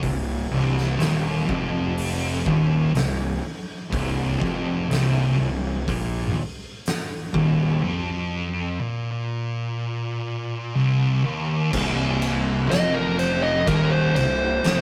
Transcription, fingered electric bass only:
0, 0, Header, 1, 2, 480
1, 0, Start_track
1, 0, Key_signature, -3, "minor"
1, 0, Tempo, 974026
1, 15, Time_signature, 4, 2, 24, 8
1, 5779, Key_signature, -3, "minor"
1, 7298, End_track
2, 0, Start_track
2, 0, Title_t, "Fingered electric bass"
2, 0, Program_c, 0, 33
2, 14, Note_on_c, 0, 24, 79
2, 238, Note_off_c, 0, 24, 0
2, 248, Note_on_c, 0, 24, 97
2, 475, Note_off_c, 0, 24, 0
2, 494, Note_on_c, 0, 27, 96
2, 718, Note_off_c, 0, 27, 0
2, 734, Note_on_c, 0, 29, 100
2, 1195, Note_off_c, 0, 29, 0
2, 1216, Note_on_c, 0, 27, 94
2, 1439, Note_off_c, 0, 27, 0
2, 1453, Note_on_c, 0, 24, 83
2, 1678, Note_off_c, 0, 24, 0
2, 1932, Note_on_c, 0, 24, 99
2, 2157, Note_off_c, 0, 24, 0
2, 2175, Note_on_c, 0, 29, 97
2, 2399, Note_off_c, 0, 29, 0
2, 2410, Note_on_c, 0, 24, 99
2, 2636, Note_off_c, 0, 24, 0
2, 2654, Note_on_c, 0, 24, 82
2, 2879, Note_off_c, 0, 24, 0
2, 2897, Note_on_c, 0, 34, 91
2, 3121, Note_off_c, 0, 34, 0
2, 3618, Note_on_c, 0, 27, 98
2, 3841, Note_off_c, 0, 27, 0
2, 5782, Note_on_c, 0, 24, 104
2, 6241, Note_off_c, 0, 24, 0
2, 6260, Note_on_c, 0, 29, 99
2, 6720, Note_off_c, 0, 29, 0
2, 6741, Note_on_c, 0, 27, 96
2, 6963, Note_off_c, 0, 27, 0
2, 6979, Note_on_c, 0, 24, 83
2, 7203, Note_off_c, 0, 24, 0
2, 7217, Note_on_c, 0, 29, 98
2, 7298, Note_off_c, 0, 29, 0
2, 7298, End_track
0, 0, End_of_file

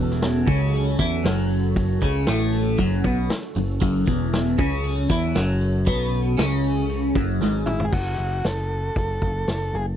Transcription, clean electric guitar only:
0, 0, Header, 1, 3, 480
1, 0, Start_track
1, 0, Key_signature, 3, "minor"
1, 0, Tempo, 514580
1, 1637, Time_signature, 4, 2, 24, 8
1, 9295, End_track
2, 0, Start_track
2, 0, Title_t, "Clean electric guitar"
2, 0, Program_c, 0, 27
2, 0, Note_on_c, 0, 40, 99
2, 426, Note_off_c, 0, 40, 0
2, 434, Note_on_c, 0, 49, 98
2, 908, Note_off_c, 0, 49, 0
2, 924, Note_on_c, 0, 52, 98
2, 1153, Note_off_c, 0, 52, 0
2, 1156, Note_on_c, 0, 42, 108
2, 1869, Note_off_c, 0, 42, 0
2, 1886, Note_on_c, 0, 49, 97
2, 2114, Note_off_c, 0, 49, 0
2, 2118, Note_on_c, 0, 45, 103
2, 2590, Note_off_c, 0, 45, 0
2, 2596, Note_on_c, 0, 42, 93
2, 2829, Note_off_c, 0, 42, 0
2, 2836, Note_on_c, 0, 47, 92
2, 3069, Note_off_c, 0, 47, 0
2, 3324, Note_on_c, 0, 42, 77
2, 3512, Note_off_c, 0, 42, 0
2, 3552, Note_on_c, 0, 42, 104
2, 3785, Note_off_c, 0, 42, 0
2, 3788, Note_on_c, 0, 40, 100
2, 4265, Note_off_c, 0, 40, 0
2, 4272, Note_on_c, 0, 49, 104
2, 4747, Note_off_c, 0, 49, 0
2, 4754, Note_on_c, 0, 52, 94
2, 4988, Note_off_c, 0, 52, 0
2, 4993, Note_on_c, 0, 42, 113
2, 5467, Note_off_c, 0, 42, 0
2, 5469, Note_on_c, 0, 47, 99
2, 5942, Note_off_c, 0, 47, 0
2, 5946, Note_on_c, 0, 49, 106
2, 6663, Note_off_c, 0, 49, 0
2, 6672, Note_on_c, 0, 42, 95
2, 6906, Note_off_c, 0, 42, 0
2, 6918, Note_on_c, 0, 44, 113
2, 7390, Note_off_c, 0, 44, 0
2, 9295, End_track
3, 0, Start_track
3, 0, Title_t, "Muted clean electric guitar strokes"
3, 3074, Note_on_c, 9, 29, 62
3, 3167, Note_off_c, 9, 29, 0
3, 9295, End_track
0, 0, End_of_file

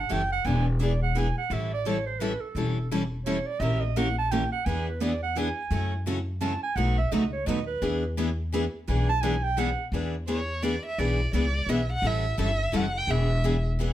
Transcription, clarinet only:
0, 0, Header, 1, 2, 480
1, 0, Start_track
1, 0, Tempo, 351083
1, 610, Time_signature, 3, 2, 24, 8
1, 19045, End_track
2, 0, Start_track
2, 0, Title_t, "Clarinet"
2, 0, Program_c, 0, 71
2, 0, Note_on_c, 0, 78, 93
2, 171, Note_on_c, 0, 79, 104
2, 192, Note_off_c, 0, 78, 0
2, 432, Note_off_c, 0, 79, 0
2, 440, Note_on_c, 0, 78, 105
2, 625, Note_on_c, 0, 80, 102
2, 646, Note_off_c, 0, 78, 0
2, 912, Note_off_c, 0, 80, 0
2, 928, Note_on_c, 0, 71, 56
2, 1123, Note_on_c, 0, 74, 74
2, 1144, Note_off_c, 0, 71, 0
2, 1395, Note_off_c, 0, 74, 0
2, 1404, Note_on_c, 0, 78, 98
2, 1613, Note_on_c, 0, 80, 90
2, 1634, Note_off_c, 0, 78, 0
2, 1879, Note_off_c, 0, 80, 0
2, 1887, Note_on_c, 0, 78, 96
2, 2090, Note_on_c, 0, 76, 83
2, 2110, Note_off_c, 0, 78, 0
2, 2363, Note_off_c, 0, 76, 0
2, 2373, Note_on_c, 0, 74, 101
2, 2555, Note_on_c, 0, 73, 85
2, 2576, Note_off_c, 0, 74, 0
2, 2812, Note_off_c, 0, 73, 0
2, 2820, Note_on_c, 0, 72, 93
2, 3000, Note_on_c, 0, 71, 84
2, 3020, Note_off_c, 0, 72, 0
2, 3291, Note_on_c, 0, 69, 93
2, 3312, Note_off_c, 0, 71, 0
2, 3963, Note_off_c, 0, 69, 0
2, 4450, Note_on_c, 0, 73, 87
2, 4731, Note_on_c, 0, 74, 106
2, 4752, Note_off_c, 0, 73, 0
2, 4922, Note_on_c, 0, 76, 104
2, 4942, Note_off_c, 0, 74, 0
2, 5206, Note_on_c, 0, 75, 100
2, 5226, Note_off_c, 0, 76, 0
2, 5429, Note_on_c, 0, 78, 88
2, 5450, Note_off_c, 0, 75, 0
2, 5713, Note_off_c, 0, 78, 0
2, 5719, Note_on_c, 0, 81, 113
2, 5898, Note_on_c, 0, 79, 95
2, 5919, Note_off_c, 0, 81, 0
2, 6175, Note_off_c, 0, 79, 0
2, 6184, Note_on_c, 0, 78, 102
2, 6363, Note_on_c, 0, 80, 91
2, 6384, Note_off_c, 0, 78, 0
2, 6660, Note_off_c, 0, 80, 0
2, 6676, Note_on_c, 0, 71, 76
2, 6863, Note_on_c, 0, 74, 77
2, 6883, Note_off_c, 0, 71, 0
2, 7143, Note_off_c, 0, 74, 0
2, 7151, Note_on_c, 0, 78, 99
2, 7348, Note_on_c, 0, 80, 95
2, 7368, Note_off_c, 0, 78, 0
2, 8299, Note_off_c, 0, 80, 0
2, 8769, Note_on_c, 0, 81, 91
2, 9043, Note_off_c, 0, 81, 0
2, 9067, Note_on_c, 0, 80, 106
2, 9243, Note_on_c, 0, 78, 89
2, 9264, Note_off_c, 0, 80, 0
2, 9536, Note_off_c, 0, 78, 0
2, 9544, Note_on_c, 0, 76, 98
2, 9734, Note_on_c, 0, 75, 82
2, 9755, Note_off_c, 0, 76, 0
2, 10007, Note_off_c, 0, 75, 0
2, 10015, Note_on_c, 0, 73, 98
2, 10212, Note_on_c, 0, 75, 111
2, 10232, Note_off_c, 0, 73, 0
2, 10478, Note_off_c, 0, 75, 0
2, 10486, Note_on_c, 0, 71, 94
2, 11115, Note_off_c, 0, 71, 0
2, 12156, Note_on_c, 0, 80, 89
2, 12419, Note_off_c, 0, 80, 0
2, 12434, Note_on_c, 0, 81, 127
2, 12600, Note_on_c, 0, 80, 101
2, 12621, Note_off_c, 0, 81, 0
2, 12894, Note_on_c, 0, 79, 107
2, 12915, Note_off_c, 0, 80, 0
2, 13109, Note_on_c, 0, 78, 91
2, 13129, Note_off_c, 0, 79, 0
2, 13488, Note_off_c, 0, 78, 0
2, 19045, End_track
0, 0, End_of_file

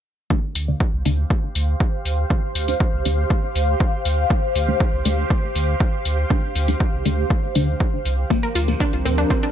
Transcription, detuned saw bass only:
0, 0, Header, 1, 2, 480
1, 0, Start_track
1, 0, Key_signature, -1, "minor"
1, 0, Tempo, 500000
1, 293, Time_signature, 4, 2, 24, 8
1, 9136, End_track
2, 0, Start_track
2, 0, Title_t, "Detuned saw bass"
2, 0, Program_c, 0, 39
2, 532, Note_on_c, 0, 38, 93
2, 719, Note_off_c, 0, 38, 0
2, 894, Note_on_c, 0, 36, 80
2, 986, Note_off_c, 0, 36, 0
2, 1012, Note_on_c, 0, 38, 100
2, 1199, Note_off_c, 0, 38, 0
2, 1492, Note_on_c, 0, 38, 93
2, 1679, Note_off_c, 0, 38, 0
2, 1972, Note_on_c, 0, 38, 97
2, 2159, Note_off_c, 0, 38, 0
2, 2452, Note_on_c, 0, 38, 103
2, 2639, Note_off_c, 0, 38, 0
2, 2814, Note_on_c, 0, 36, 81
2, 2906, Note_off_c, 0, 36, 0
2, 2932, Note_on_c, 0, 38, 99
2, 3119, Note_off_c, 0, 38, 0
2, 3412, Note_on_c, 0, 38, 98
2, 3599, Note_off_c, 0, 38, 0
2, 3892, Note_on_c, 0, 38, 100
2, 4079, Note_off_c, 0, 38, 0
2, 4373, Note_on_c, 0, 38, 99
2, 4559, Note_off_c, 0, 38, 0
2, 4734, Note_on_c, 0, 36, 83
2, 4826, Note_off_c, 0, 36, 0
2, 4852, Note_on_c, 0, 38, 105
2, 5039, Note_off_c, 0, 38, 0
2, 5333, Note_on_c, 0, 38, 93
2, 5519, Note_off_c, 0, 38, 0
2, 5812, Note_on_c, 0, 38, 101
2, 5999, Note_off_c, 0, 38, 0
2, 6292, Note_on_c, 0, 38, 94
2, 6479, Note_off_c, 0, 38, 0
2, 6655, Note_on_c, 0, 36, 81
2, 6746, Note_off_c, 0, 36, 0
2, 6772, Note_on_c, 0, 38, 107
2, 6959, Note_off_c, 0, 38, 0
2, 7252, Note_on_c, 0, 38, 96
2, 7439, Note_off_c, 0, 38, 0
2, 7732, Note_on_c, 0, 36, 80
2, 7919, Note_off_c, 0, 36, 0
2, 8211, Note_on_c, 0, 38, 94
2, 8398, Note_off_c, 0, 38, 0
2, 8574, Note_on_c, 0, 36, 81
2, 8665, Note_off_c, 0, 36, 0
2, 8692, Note_on_c, 0, 38, 107
2, 8879, Note_off_c, 0, 38, 0
2, 9136, End_track
0, 0, End_of_file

